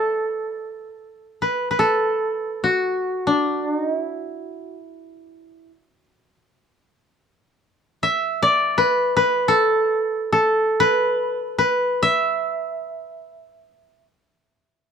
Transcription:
Already playing: A4 B4 D5 E5
1.42 B4
1.71 B4
1.79 A4
2.64 F#4
3.27 D4
3.71 D#4
3.99 E4
8.03 E5
8.42 D5
8.78 B4
9.17 B4
9.48 A4
10.32 A4
10.80 B4
11.59 B4
12.03 E5

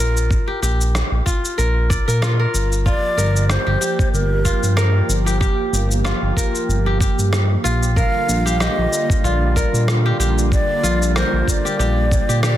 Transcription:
Already playing: F4 G4
0.00 A#1 A#4, cabasa
0.17 cabasa
0.31 kick, cabasa
0.48 G4
0.62 A#1 G4, cabasa
0.81 cabasa
0.95 cross-stick, cabasa
1.11 A#1
1.26 F4, kick, cabasa
1.45 cabasa
1.58 A#1 A#4, cabasa
1.90 D5, kick, cabasa
2.08 A#2 A#4, cabasa
2.22 F4, cross-stick, cabasa
2.39 A#4
2.54 G1, cabasa
2.73 cabasa
2.86 F3 A#3 F4 G4 D5, kick, cabasa
3.17 G1 A#4, cabasa
3.36 cabasa
3.49 C5, cross-stick, cabasa
3.67 G1 G4
3.81 G4, cabasa
3.99 kick, cabasa
4.12 G1 A#4, cabasa
4.45 F4, kick, cabasa
4.63 G2, cabasa
4.77 A#4, cross-stick, cabasa
5.09 G1, cabasa
5.26 G4, cabasa
5.41 G4, kick, cabasa
5.73 G1, cabasa
5.92 cabasa
6.04 F4, cross-stick, cabasa
6.22 G1
6.37 A#4, kick, cabasa
6.55 cabasa
6.69 G1, cabasa
6.86 G4
7.01 G4, kick, cabasa
7.18 G2, cabasa
7.33 cross-stick, cabasa
7.64 A#1 F4, cabasa
7.83 cabasa
7.96 D3 G3 A#3 F4 A#4 F5, kick, cabasa
8.28 A#1, cabasa
8.46 G4, cabasa
8.60 G4 D#5, cross-stick, cabasa
8.78 A#1
8.93 cabasa
9.10 kick, cabasa
9.24 A#1 F4 D5, cabasa
9.56 A#4, kick, cabasa
9.73 A#2, cabasa
9.88 cross-stick, cabasa
10.06 G4
10.19 A#1 G4, cabasa
10.39 cabasa
10.52 D5, kick, cabasa
10.83 A#1 F4, cabasa
11.03 cabasa
11.16 A#4 C5, cross-stick, cabasa
11.33 A#1
11.48 D5, kick, cabasa
11.65 G4, cabasa
11.79 A#1 G4, cabasa
12.12 kick, cabasa
12.29 A#2 G4, cabasa
12.43 G4 D5, cross-stick, cabasa

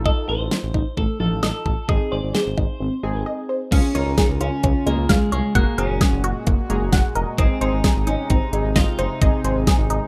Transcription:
Already playing: D#4 F4 A4
0.06 A4 D#5, kick
0.28 A1 A4 C5
0.40 A1
0.51 F4, snare
0.63 A1
0.74 A1 D#4, kick
0.97 A1 A3 A4, kick
1.20 A1 F3 D#4 F4 A4
1.32 A1
1.43 A1 A4 D#5, snare
1.66 A1 A4, kick
1.89 G#1 C4 D#4 G#4 D#5, kick
2.12 G#1 C5 D5
2.23 G#1
2.35 G#4 C5, snare
2.46 G#1
2.58 G#1 D#4, kick
2.80 G#1 C4
3.03 G#1 G#3 C4 D#4 G#4
3.15 G#1
3.26 D#5
3.49 C5
3.72 C#2 C#3 G#3 C#4 F4 G#4 F5, kick, closed hi-hat, crash
3.95 C#2 C#4 D#4 F4 A#4 C#5, closed hi-hat
4.06 C#2
4.18 G#4, kick, snare, closed hi-hat
4.29 C#2
4.41 C#2 C#4 F4, closed hi-hat
4.63 C#2 C#4, kick, closed hi-hat
4.86 C#2 G#3 A#3 C#4 F4 G#4, closed hi-hat
4.98 C#2
5.09 C#2 G#3 F5, kick, snare, closed hi-hat
5.32 C2 G#3 C#5, closed hi-hat
5.55 F#1 A#2 A#3 F#4 G#4 F#5, kick, closed hi-hat
5.78 F#1 A#3 C#4 F#4 G#4 A#4, closed hi-hat
5.90 F#1
6.01 G#4, kick, snare, closed hi-hat
6.12 F#1
6.24 F#1 F#4, closed hi-hat
6.47 F#1 A#3, kick, closed hi-hat
6.70 F#1 G#3 A#3 F#4 G#4 A#5, closed hi-hat
6.81 F#1
6.93 F#1 F#5, kick, snare, closed hi-hat
7.15 F1 A#4 D#5, closed hi-hat
7.38 G#1 C3 C4 D#4 G#4 D#5, kick, closed hi-hat
7.61 G#1 C4 D#4 G#4 C5, closed hi-hat
7.73 G#1
7.84 G#4, kick, snare, closed hi-hat
7.96 G#1
8.07 G#1 C#4 D#4, closed hi-hat
8.30 G#1 C4 D#4, kick, closed hi-hat
8.53 G#1 G#3 C4 D#4 G#4, closed hi-hat
8.64 G#1
8.76 G#1 F4 D#5, kick, snare, closed hi-hat
8.99 F#1 D#4 C5, closed hi-hat
9.22 G#1 C4 D#4 G#4 D#5, kick, closed hi-hat
9.44 G#1 C4 D#4 G#4 C5, closed hi-hat
9.56 G#1
9.67 G#4, kick, snare, closed hi-hat
9.79 G#1
9.90 G#1 D#4, closed hi-hat

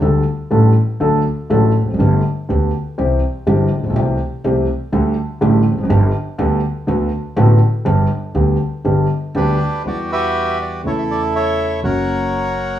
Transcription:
0.02 D2 D3 G3 A3 D4 A4
0.51 A1 A2 G3 A3 D4 A4
1.00 D2 D3 F#3 A3 D4 A4
1.50 A1 A2 F#3 A3 D4 A4
1.82 E1 E2
1.87 F1 F2
1.94 F#1 F#2
1.99 G1 G2 D3 A3 B3 G4
2.49 D2 D3 A3 B3 G4
2.98 C2 C3 E3 G3 C4 G4
3.47 G1 G2 E3 G3 C4 G4
3.78 A1
3.84 A#1
3.90 B1
3.96 C2 C3 E3 A3 C4 G4
4.44 C2 C3 E3 A3 C4 G4
4.92 D2 D3 G3 A3 G4
5.41 A1 A2 D3 G3 A3 G4
5.72 E1 E2
5.78 F1 F2
5.83 F#1 F#2
5.89 G1 G2 D3 G3 B3 G4
6.38 D2 D3 G3 B3 G4
6.87 D2 D3 A3 B3 F#4
7.36 A1 A2 D3 A3 B3 F#4
7.85 G1 G2 D3 G3 B3 G4
8.35 D2 D3 G3 B3 G4
8.85 G1 G2 D3 G3 B3 G4
9.35 D2 D3 G3 B3 D4 G4 B4
9.83 E2 E3 G3 B3 F#4 G4 F#5
9.88 D5
10.12 G4 B4 E5
10.62 D5
10.83 E2 C#3 E3 A3 E4 A4 C#5
10.98 E5
11.11 D5
11.36 A4 C#5 E5
11.81 F#1 F#2 C#3 F#3 A#3 F#4 A#4 C#5 F#5

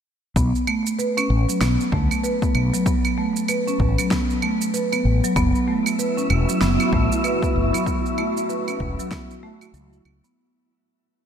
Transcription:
0.36 B1 B3, kick, shaker
0.55 shaker
0.67 A3, claves
0.87 shaker
0.99 B4, shaker
1.17 C#4, claves, shaker
1.30 A1
1.49 F#3, shaker
1.61 B1 B3, snare, claves, shaker
1.80 shaker
1.92 D2 A3, kick
2.11 claves, shaker
2.24 B4, shaker
2.42 B3, kick, shaker
2.55 B1, claves
2.74 F#3, shaker
2.86 B3, kick, shaker
3.05 claves, shaker
3.18 A3
3.36 shaker
3.48 B4, claves, shaker
3.67 C#4, shaker
3.80 A1, kick
3.98 F#3, claves, shaker
4.11 B3, kick, snare, shaker
4.30 shaker
4.42 A3, claves
4.61 shaker
4.74 B4, shaker
4.92 B3, claves, shaker
5.05 A1
5.24 F#3, shaker
5.36 F#1 A3 B3 E4 F#4 E5, kick, claves, shaker
5.55 shaker
5.68 A3
5.86 claves, shaker
5.99 B4, shaker
6.17 C#4, shaker
6.30 E1, claves
6.49 F#3, shaker
6.61 F#1 B3, snare, shaker
6.80 claves, shaker
6.93 A1 A3, kick
7.12 shaker
7.24 B4, claves, shaker
7.43 B3, kick, shaker
7.56 F#1
7.74 F#3, claves, shaker
7.86 B3, kick, shaker
8.06 shaker
8.18 A3, claves
8.37 shaker
8.49 B4, shaker
8.68 C#4, claves, shaker
8.80 E1, kick
8.99 F#3, shaker
9.11 B3, kick, snare, claves, shaker
9.31 shaker
9.43 A3
9.61 F#4, claves, shaker
9.74 C#2 F#3, shaker
9.93 E4, shaker
10.05 C#2, claves
10.24 B3, shaker

